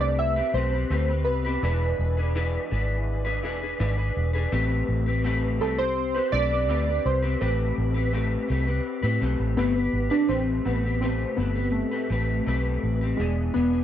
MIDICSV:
0, 0, Header, 1, 4, 480
1, 0, Start_track
1, 0, Key_signature, 0, "minor"
1, 0, Tempo, 722892
1, 1084, Time_signature, 4, 2, 24, 8
1, 9189, End_track
2, 0, Start_track
2, 0, Title_t, "Clean electric guitar"
2, 0, Program_c, 0, 27
2, 0, Note_on_c, 0, 57, 47
2, 0, Note_on_c, 0, 60, 50
2, 0, Note_on_c, 0, 67, 57
2, 0, Note_on_c, 0, 71, 54
2, 233, Note_off_c, 0, 71, 0
2, 240, Note_off_c, 0, 57, 0
2, 240, Note_off_c, 0, 67, 0
2, 241, Note_on_c, 0, 71, 53
2, 243, Note_off_c, 0, 60, 0
2, 247, Note_on_c, 0, 67, 44
2, 257, Note_on_c, 0, 60, 41
2, 359, Note_on_c, 0, 57, 60
2, 361, Note_off_c, 0, 60, 0
2, 362, Note_off_c, 0, 71, 0
2, 364, Note_off_c, 0, 67, 0
2, 369, Note_on_c, 0, 60, 62
2, 372, Note_on_c, 0, 67, 61
2, 378, Note_on_c, 0, 71, 59
2, 473, Note_off_c, 0, 71, 0
2, 481, Note_on_c, 0, 71, 46
2, 482, Note_off_c, 0, 57, 0
2, 483, Note_off_c, 0, 67, 0
2, 486, Note_off_c, 0, 60, 0
2, 491, Note_on_c, 0, 67, 45
2, 499, Note_on_c, 0, 60, 38
2, 597, Note_off_c, 0, 60, 0
2, 600, Note_off_c, 0, 67, 0
2, 600, Note_on_c, 0, 57, 76
2, 603, Note_off_c, 0, 71, 0
2, 605, Note_on_c, 0, 60, 83
2, 608, Note_on_c, 0, 67, 88
2, 612, Note_on_c, 0, 71, 85
2, 711, Note_off_c, 0, 71, 0
2, 719, Note_on_c, 0, 71, 51
2, 722, Note_off_c, 0, 57, 0
2, 722, Note_off_c, 0, 67, 0
2, 724, Note_off_c, 0, 60, 0
2, 730, Note_on_c, 0, 67, 47
2, 735, Note_on_c, 0, 60, 46
2, 953, Note_off_c, 0, 71, 0
2, 961, Note_on_c, 0, 71, 50
2, 963, Note_off_c, 0, 67, 0
2, 970, Note_off_c, 0, 60, 0
2, 971, Note_on_c, 0, 67, 58
2, 979, Note_on_c, 0, 60, 51
2, 1082, Note_off_c, 0, 71, 0
2, 1082, Note_on_c, 0, 52, 82
2, 1083, Note_off_c, 0, 60, 0
2, 1086, Note_off_c, 0, 67, 0
2, 1086, Note_on_c, 0, 62, 78
2, 1088, Note_on_c, 0, 68, 88
2, 1092, Note_on_c, 0, 71, 94
2, 1433, Note_off_c, 0, 71, 0
2, 1441, Note_on_c, 0, 71, 57
2, 1442, Note_off_c, 0, 68, 0
2, 1443, Note_off_c, 0, 52, 0
2, 1445, Note_off_c, 0, 62, 0
2, 1450, Note_on_c, 0, 68, 52
2, 1458, Note_on_c, 0, 62, 45
2, 1557, Note_off_c, 0, 62, 0
2, 1562, Note_off_c, 0, 68, 0
2, 1562, Note_off_c, 0, 71, 0
2, 1562, Note_on_c, 0, 52, 91
2, 1565, Note_on_c, 0, 62, 90
2, 1570, Note_on_c, 0, 68, 90
2, 1572, Note_on_c, 0, 71, 99
2, 1787, Note_off_c, 0, 52, 0
2, 1794, Note_off_c, 0, 62, 0
2, 1795, Note_on_c, 0, 52, 60
2, 1800, Note_off_c, 0, 68, 0
2, 1802, Note_on_c, 0, 62, 56
2, 1805, Note_off_c, 0, 71, 0
2, 1808, Note_on_c, 0, 68, 59
2, 1813, Note_on_c, 0, 71, 64
2, 2149, Note_off_c, 0, 71, 0
2, 2157, Note_on_c, 0, 71, 58
2, 2159, Note_off_c, 0, 52, 0
2, 2159, Note_off_c, 0, 68, 0
2, 2163, Note_off_c, 0, 62, 0
2, 2167, Note_on_c, 0, 68, 57
2, 2173, Note_on_c, 0, 62, 46
2, 2276, Note_off_c, 0, 62, 0
2, 2278, Note_on_c, 0, 52, 67
2, 2280, Note_off_c, 0, 71, 0
2, 2281, Note_off_c, 0, 68, 0
2, 2284, Note_on_c, 0, 62, 70
2, 2289, Note_on_c, 0, 68, 78
2, 2293, Note_on_c, 0, 71, 75
2, 2393, Note_off_c, 0, 71, 0
2, 2401, Note_off_c, 0, 52, 0
2, 2401, Note_on_c, 0, 71, 51
2, 2404, Note_off_c, 0, 62, 0
2, 2404, Note_off_c, 0, 68, 0
2, 2412, Note_on_c, 0, 68, 46
2, 2417, Note_on_c, 0, 62, 42
2, 2515, Note_off_c, 0, 62, 0
2, 2518, Note_off_c, 0, 68, 0
2, 2519, Note_on_c, 0, 52, 92
2, 2522, Note_off_c, 0, 71, 0
2, 2523, Note_on_c, 0, 62, 92
2, 2526, Note_on_c, 0, 68, 95
2, 2529, Note_on_c, 0, 71, 97
2, 2632, Note_off_c, 0, 71, 0
2, 2640, Note_off_c, 0, 68, 0
2, 2640, Note_on_c, 0, 71, 60
2, 2641, Note_off_c, 0, 52, 0
2, 2643, Note_off_c, 0, 62, 0
2, 2648, Note_on_c, 0, 68, 53
2, 2656, Note_on_c, 0, 62, 47
2, 2870, Note_off_c, 0, 71, 0
2, 2878, Note_on_c, 0, 71, 61
2, 2881, Note_off_c, 0, 68, 0
2, 2889, Note_on_c, 0, 68, 66
2, 2890, Note_off_c, 0, 62, 0
2, 2898, Note_on_c, 0, 62, 56
2, 3001, Note_off_c, 0, 62, 0
2, 3001, Note_off_c, 0, 71, 0
2, 3001, Note_on_c, 0, 57, 80
2, 3003, Note_on_c, 0, 60, 98
2, 3006, Note_off_c, 0, 68, 0
2, 3009, Note_on_c, 0, 67, 96
2, 3012, Note_on_c, 0, 71, 96
2, 3352, Note_off_c, 0, 71, 0
2, 3360, Note_on_c, 0, 71, 56
2, 3362, Note_off_c, 0, 57, 0
2, 3362, Note_off_c, 0, 67, 0
2, 3363, Note_off_c, 0, 60, 0
2, 3370, Note_on_c, 0, 67, 47
2, 3377, Note_on_c, 0, 60, 48
2, 3479, Note_off_c, 0, 60, 0
2, 3481, Note_on_c, 0, 57, 92
2, 3482, Note_off_c, 0, 71, 0
2, 3484, Note_off_c, 0, 67, 0
2, 3487, Note_on_c, 0, 60, 90
2, 3492, Note_on_c, 0, 67, 84
2, 3492, Note_on_c, 0, 71, 91
2, 3716, Note_off_c, 0, 57, 0
2, 3723, Note_off_c, 0, 60, 0
2, 3724, Note_on_c, 0, 57, 49
2, 3727, Note_off_c, 0, 67, 0
2, 3728, Note_off_c, 0, 71, 0
2, 3731, Note_on_c, 0, 60, 58
2, 3736, Note_on_c, 0, 67, 65
2, 3740, Note_on_c, 0, 71, 58
2, 3842, Note_off_c, 0, 67, 0
2, 3843, Note_off_c, 0, 57, 0
2, 3847, Note_off_c, 0, 60, 0
2, 3850, Note_on_c, 0, 67, 46
2, 3852, Note_off_c, 0, 71, 0
2, 3856, Note_on_c, 0, 60, 39
2, 4080, Note_on_c, 0, 71, 51
2, 4081, Note_off_c, 0, 67, 0
2, 4089, Note_off_c, 0, 60, 0
2, 4089, Note_on_c, 0, 67, 47
2, 4096, Note_on_c, 0, 60, 40
2, 4198, Note_off_c, 0, 60, 0
2, 4200, Note_on_c, 0, 57, 59
2, 4202, Note_off_c, 0, 71, 0
2, 4203, Note_off_c, 0, 67, 0
2, 4206, Note_on_c, 0, 60, 62
2, 4210, Note_on_c, 0, 67, 59
2, 4215, Note_on_c, 0, 71, 63
2, 4314, Note_off_c, 0, 71, 0
2, 4321, Note_off_c, 0, 57, 0
2, 4322, Note_on_c, 0, 71, 51
2, 4324, Note_off_c, 0, 60, 0
2, 4324, Note_off_c, 0, 67, 0
2, 4332, Note_on_c, 0, 67, 43
2, 4339, Note_on_c, 0, 60, 42
2, 4437, Note_off_c, 0, 60, 0
2, 4440, Note_off_c, 0, 67, 0
2, 4440, Note_on_c, 0, 57, 78
2, 4442, Note_off_c, 0, 71, 0
2, 4445, Note_on_c, 0, 60, 91
2, 4448, Note_on_c, 0, 67, 95
2, 4453, Note_on_c, 0, 71, 93
2, 4553, Note_off_c, 0, 71, 0
2, 4561, Note_off_c, 0, 57, 0
2, 4561, Note_on_c, 0, 71, 52
2, 4562, Note_off_c, 0, 67, 0
2, 4564, Note_off_c, 0, 60, 0
2, 4570, Note_on_c, 0, 67, 42
2, 4578, Note_on_c, 0, 60, 42
2, 4789, Note_off_c, 0, 71, 0
2, 4797, Note_off_c, 0, 67, 0
2, 4797, Note_on_c, 0, 71, 58
2, 4805, Note_off_c, 0, 60, 0
2, 4805, Note_on_c, 0, 67, 51
2, 4813, Note_on_c, 0, 60, 52
2, 4915, Note_off_c, 0, 60, 0
2, 4918, Note_off_c, 0, 67, 0
2, 4919, Note_on_c, 0, 57, 73
2, 4920, Note_off_c, 0, 71, 0
2, 4923, Note_on_c, 0, 60, 81
2, 4926, Note_on_c, 0, 67, 88
2, 4928, Note_on_c, 0, 71, 82
2, 5266, Note_off_c, 0, 71, 0
2, 5274, Note_off_c, 0, 67, 0
2, 5274, Note_on_c, 0, 71, 51
2, 5280, Note_off_c, 0, 57, 0
2, 5282, Note_on_c, 0, 67, 48
2, 5283, Note_off_c, 0, 60, 0
2, 5289, Note_on_c, 0, 60, 45
2, 5393, Note_off_c, 0, 60, 0
2, 5397, Note_off_c, 0, 67, 0
2, 5397, Note_on_c, 0, 57, 80
2, 5398, Note_off_c, 0, 71, 0
2, 5401, Note_on_c, 0, 60, 71
2, 5405, Note_on_c, 0, 67, 78
2, 5407, Note_on_c, 0, 71, 83
2, 5627, Note_off_c, 0, 57, 0
2, 5632, Note_off_c, 0, 60, 0
2, 5635, Note_on_c, 0, 57, 62
2, 5638, Note_off_c, 0, 67, 0
2, 5640, Note_on_c, 0, 60, 61
2, 5645, Note_off_c, 0, 71, 0
2, 5646, Note_on_c, 0, 67, 69
2, 5652, Note_on_c, 0, 71, 74
2, 5749, Note_off_c, 0, 71, 0
2, 5756, Note_off_c, 0, 67, 0
2, 5757, Note_on_c, 0, 71, 59
2, 5758, Note_off_c, 0, 57, 0
2, 5761, Note_off_c, 0, 60, 0
2, 5764, Note_on_c, 0, 67, 47
2, 5771, Note_on_c, 0, 60, 46
2, 5985, Note_off_c, 0, 71, 0
2, 5993, Note_off_c, 0, 67, 0
2, 5993, Note_on_c, 0, 71, 57
2, 6000, Note_off_c, 0, 60, 0
2, 6001, Note_on_c, 0, 67, 53
2, 6008, Note_on_c, 0, 60, 46
2, 6112, Note_off_c, 0, 60, 0
2, 6114, Note_on_c, 0, 57, 65
2, 6117, Note_off_c, 0, 71, 0
2, 6120, Note_on_c, 0, 60, 65
2, 6121, Note_off_c, 0, 67, 0
2, 6128, Note_on_c, 0, 67, 71
2, 6131, Note_on_c, 0, 71, 64
2, 6348, Note_off_c, 0, 57, 0
2, 6354, Note_off_c, 0, 60, 0
2, 6356, Note_on_c, 0, 57, 80
2, 6359, Note_off_c, 0, 67, 0
2, 6360, Note_off_c, 0, 71, 0
2, 6362, Note_on_c, 0, 60, 93
2, 6367, Note_on_c, 0, 67, 91
2, 6368, Note_on_c, 0, 71, 99
2, 6461, Note_off_c, 0, 71, 0
2, 6469, Note_on_c, 0, 71, 61
2, 6472, Note_off_c, 0, 67, 0
2, 6479, Note_off_c, 0, 57, 0
2, 6480, Note_on_c, 0, 67, 50
2, 6482, Note_off_c, 0, 60, 0
2, 6699, Note_off_c, 0, 71, 0
2, 6707, Note_on_c, 0, 71, 65
2, 6709, Note_off_c, 0, 67, 0
2, 6717, Note_on_c, 0, 67, 53
2, 6723, Note_on_c, 0, 60, 55
2, 6825, Note_off_c, 0, 60, 0
2, 6829, Note_on_c, 0, 57, 68
2, 6831, Note_off_c, 0, 67, 0
2, 6833, Note_on_c, 0, 60, 70
2, 6834, Note_off_c, 0, 71, 0
2, 6839, Note_on_c, 0, 67, 80
2, 6841, Note_on_c, 0, 71, 83
2, 7062, Note_off_c, 0, 57, 0
2, 7068, Note_off_c, 0, 60, 0
2, 7070, Note_on_c, 0, 57, 60
2, 7074, Note_off_c, 0, 67, 0
2, 7076, Note_on_c, 0, 60, 57
2, 7081, Note_off_c, 0, 71, 0
2, 7082, Note_on_c, 0, 67, 65
2, 7088, Note_on_c, 0, 71, 65
2, 7186, Note_off_c, 0, 71, 0
2, 7194, Note_on_c, 0, 71, 46
2, 7195, Note_off_c, 0, 67, 0
2, 7196, Note_off_c, 0, 57, 0
2, 7199, Note_off_c, 0, 60, 0
2, 7203, Note_on_c, 0, 67, 44
2, 7209, Note_on_c, 0, 60, 39
2, 7314, Note_off_c, 0, 60, 0
2, 7317, Note_off_c, 0, 67, 0
2, 7317, Note_off_c, 0, 71, 0
2, 7317, Note_on_c, 0, 57, 72
2, 7322, Note_on_c, 0, 60, 81
2, 7325, Note_on_c, 0, 67, 67
2, 7329, Note_on_c, 0, 71, 75
2, 7546, Note_off_c, 0, 57, 0
2, 7553, Note_off_c, 0, 60, 0
2, 7554, Note_on_c, 0, 57, 45
2, 7557, Note_off_c, 0, 67, 0
2, 7561, Note_on_c, 0, 60, 55
2, 7563, Note_off_c, 0, 71, 0
2, 7565, Note_on_c, 0, 67, 53
2, 7571, Note_on_c, 0, 71, 52
2, 7664, Note_off_c, 0, 71, 0
2, 7672, Note_on_c, 0, 71, 46
2, 7674, Note_off_c, 0, 67, 0
2, 7678, Note_off_c, 0, 57, 0
2, 7680, Note_off_c, 0, 60, 0
2, 7682, Note_on_c, 0, 67, 40
2, 7688, Note_on_c, 0, 60, 40
2, 7903, Note_off_c, 0, 71, 0
2, 7911, Note_on_c, 0, 71, 46
2, 7913, Note_off_c, 0, 67, 0
2, 7921, Note_off_c, 0, 60, 0
2, 7921, Note_on_c, 0, 67, 42
2, 7929, Note_on_c, 0, 60, 39
2, 8032, Note_off_c, 0, 60, 0
2, 8033, Note_on_c, 0, 57, 57
2, 8036, Note_off_c, 0, 71, 0
2, 8037, Note_off_c, 0, 67, 0
2, 8040, Note_on_c, 0, 60, 50
2, 8045, Note_on_c, 0, 67, 57
2, 8051, Note_on_c, 0, 71, 65
2, 8269, Note_off_c, 0, 57, 0
2, 8273, Note_off_c, 0, 60, 0
2, 8277, Note_off_c, 0, 67, 0
2, 8277, Note_on_c, 0, 57, 75
2, 8280, Note_off_c, 0, 71, 0
2, 8281, Note_on_c, 0, 60, 75
2, 8285, Note_on_c, 0, 67, 75
2, 8288, Note_on_c, 0, 71, 83
2, 8632, Note_off_c, 0, 71, 0
2, 8639, Note_off_c, 0, 57, 0
2, 8639, Note_on_c, 0, 71, 51
2, 8641, Note_off_c, 0, 60, 0
2, 8643, Note_off_c, 0, 67, 0
2, 8650, Note_on_c, 0, 67, 51
2, 8656, Note_on_c, 0, 60, 42
2, 8756, Note_on_c, 0, 52, 68
2, 8760, Note_off_c, 0, 71, 0
2, 8763, Note_off_c, 0, 60, 0
2, 8763, Note_on_c, 0, 59, 79
2, 8766, Note_off_c, 0, 67, 0
2, 8766, Note_on_c, 0, 62, 81
2, 8769, Note_on_c, 0, 68, 82
2, 8990, Note_off_c, 0, 52, 0
2, 8997, Note_off_c, 0, 59, 0
2, 8998, Note_on_c, 0, 52, 56
2, 9000, Note_off_c, 0, 62, 0
2, 9005, Note_off_c, 0, 68, 0
2, 9005, Note_on_c, 0, 59, 64
2, 9008, Note_on_c, 0, 62, 67
2, 9013, Note_on_c, 0, 68, 65
2, 9109, Note_off_c, 0, 68, 0
2, 9117, Note_on_c, 0, 68, 57
2, 9120, Note_off_c, 0, 52, 0
2, 9120, Note_off_c, 0, 62, 0
2, 9123, Note_off_c, 0, 59, 0
2, 9128, Note_on_c, 0, 62, 45
2, 9132, Note_on_c, 0, 59, 43
2, 9189, Note_off_c, 0, 59, 0
2, 9189, Note_off_c, 0, 62, 0
2, 9189, Note_off_c, 0, 68, 0
2, 9189, End_track
3, 0, Start_track
3, 0, Title_t, "Synth keys"
3, 0, Program_c, 1, 88
3, 4, Note_on_c, 1, 74, 99
3, 125, Note_on_c, 1, 76, 109
3, 127, Note_off_c, 1, 74, 0
3, 360, Note_on_c, 1, 72, 86
3, 371, Note_off_c, 1, 76, 0
3, 827, Note_on_c, 1, 71, 73
3, 857, Note_off_c, 1, 72, 0
3, 1529, Note_off_c, 1, 71, 0
3, 3724, Note_on_c, 1, 69, 92
3, 3835, Note_off_c, 1, 69, 0
3, 3841, Note_on_c, 1, 72, 98
3, 4197, Note_on_c, 1, 74, 106
3, 4213, Note_off_c, 1, 72, 0
3, 4685, Note_on_c, 1, 72, 89
3, 4694, Note_off_c, 1, 74, 0
3, 4921, Note_on_c, 1, 71, 79
3, 4931, Note_off_c, 1, 72, 0
3, 5375, Note_off_c, 1, 71, 0
3, 6354, Note_on_c, 1, 59, 96
3, 6712, Note_on_c, 1, 62, 93
3, 6729, Note_off_c, 1, 59, 0
3, 6830, Note_on_c, 1, 60, 98
3, 6841, Note_off_c, 1, 62, 0
3, 7074, Note_on_c, 1, 59, 86
3, 7083, Note_off_c, 1, 60, 0
3, 7301, Note_off_c, 1, 59, 0
3, 7309, Note_on_c, 1, 60, 79
3, 7547, Note_on_c, 1, 59, 91
3, 7563, Note_off_c, 1, 60, 0
3, 7781, Note_on_c, 1, 57, 86
3, 7802, Note_off_c, 1, 59, 0
3, 8745, Note_on_c, 1, 56, 79
3, 8780, Note_off_c, 1, 57, 0
3, 8989, Note_on_c, 1, 59, 78
3, 9000, Note_off_c, 1, 56, 0
3, 9189, Note_off_c, 1, 59, 0
3, 9189, End_track
4, 0, Start_track
4, 0, Title_t, "Fingered electric bass"
4, 0, Program_c, 2, 33
4, 0, Note_on_c, 2, 36, 80
4, 267, Note_off_c, 2, 36, 0
4, 357, Note_on_c, 2, 35, 83
4, 552, Note_off_c, 2, 35, 0
4, 599, Note_on_c, 2, 38, 78
4, 842, Note_off_c, 2, 38, 0
4, 842, Note_on_c, 2, 36, 78
4, 1035, Note_off_c, 2, 36, 0
4, 1081, Note_on_c, 2, 28, 100
4, 1274, Note_off_c, 2, 28, 0
4, 1322, Note_on_c, 2, 28, 97
4, 1707, Note_off_c, 2, 28, 0
4, 1805, Note_on_c, 2, 32, 89
4, 2285, Note_off_c, 2, 32, 0
4, 2285, Note_on_c, 2, 28, 83
4, 2476, Note_off_c, 2, 28, 0
4, 2525, Note_on_c, 2, 32, 101
4, 2716, Note_off_c, 2, 32, 0
4, 2766, Note_on_c, 2, 28, 90
4, 2957, Note_off_c, 2, 28, 0
4, 3005, Note_on_c, 2, 33, 97
4, 3196, Note_off_c, 2, 33, 0
4, 3244, Note_on_c, 2, 33, 91
4, 3726, Note_off_c, 2, 33, 0
4, 3726, Note_on_c, 2, 36, 82
4, 4108, Note_off_c, 2, 36, 0
4, 4201, Note_on_c, 2, 35, 76
4, 4443, Note_off_c, 2, 35, 0
4, 4443, Note_on_c, 2, 38, 90
4, 4635, Note_off_c, 2, 38, 0
4, 4685, Note_on_c, 2, 36, 78
4, 4876, Note_off_c, 2, 36, 0
4, 4924, Note_on_c, 2, 33, 101
4, 5115, Note_off_c, 2, 33, 0
4, 5166, Note_on_c, 2, 33, 84
4, 5548, Note_off_c, 2, 33, 0
4, 5644, Note_on_c, 2, 36, 83
4, 5835, Note_off_c, 2, 36, 0
4, 5998, Note_on_c, 2, 45, 94
4, 6096, Note_off_c, 2, 45, 0
4, 6119, Note_on_c, 2, 35, 80
4, 6216, Note_off_c, 2, 35, 0
4, 6239, Note_on_c, 2, 33, 82
4, 6336, Note_off_c, 2, 33, 0
4, 6357, Note_on_c, 2, 31, 77
4, 6551, Note_off_c, 2, 31, 0
4, 6595, Note_on_c, 2, 32, 77
4, 6694, Note_off_c, 2, 32, 0
4, 6834, Note_on_c, 2, 33, 106
4, 7029, Note_off_c, 2, 33, 0
4, 7077, Note_on_c, 2, 33, 84
4, 7463, Note_off_c, 2, 33, 0
4, 7556, Note_on_c, 2, 31, 76
4, 7846, Note_off_c, 2, 31, 0
4, 8036, Note_on_c, 2, 33, 78
4, 8230, Note_off_c, 2, 33, 0
4, 8281, Note_on_c, 2, 35, 88
4, 8473, Note_off_c, 2, 35, 0
4, 8522, Note_on_c, 2, 33, 85
4, 8714, Note_off_c, 2, 33, 0
4, 8761, Note_on_c, 2, 28, 97
4, 8953, Note_off_c, 2, 28, 0
4, 9002, Note_on_c, 2, 28, 90
4, 9189, Note_off_c, 2, 28, 0
4, 9189, End_track
0, 0, End_of_file